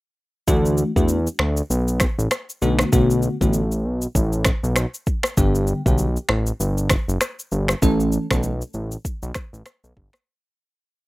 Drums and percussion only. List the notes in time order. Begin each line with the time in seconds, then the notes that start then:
0.48 kick, shaker
0.66 shaker
0.78 shaker
0.96 kick, shaker
1.08 shaker
1.27 shaker
1.39 finger snap, cross-stick
1.57 shaker
1.71 shaker
1.88 shaker
2.00 finger snap, kick, cross-stick, shaker
2.19 shaker
2.31 finger snap, cross-stick, shaker
2.50 shaker
2.62 shaker
2.79 finger snap, cross-stick, shaker
2.93 kick, shaker
3.10 shaker
3.22 shaker
3.41 kick, shaker
3.53 shaker
3.72 shaker
4.02 shaker
4.15 kick, shaker
4.33 shaker
4.45 finger snap, kick, cross-stick, shaker
4.64 shaker
4.76 finger snap, cross-stick, shaker
4.94 shaker
5.07 kick, shaker
5.23 finger snap, cross-stick, shaker
5.37 kick, shaker
5.55 shaker
5.67 shaker
5.86 kick, shaker
5.98 shaker
6.17 shaker
6.29 finger snap, cross-stick
6.47 shaker
6.60 shaker
6.78 shaker
6.90 finger snap, kick, cross-stick, shaker
7.09 shaker
7.21 finger snap, cross-stick, shaker
7.39 shaker
7.52 shaker
7.68 finger snap, cross-stick, shaker
7.82 kick, shaker
8.00 shaker
8.12 shaker
8.31 finger snap, kick, cross-stick, shaker
8.43 shaker
8.62 shaker
8.74 shaker
8.92 shaker
9.05 kick, shaker
9.23 shaker
9.34 finger snap, kick, cross-stick, shaker
9.54 shaker
9.66 finger snap, cross-stick, shaker
9.84 shaker
9.97 kick
10.13 finger snap, cross-stick, shaker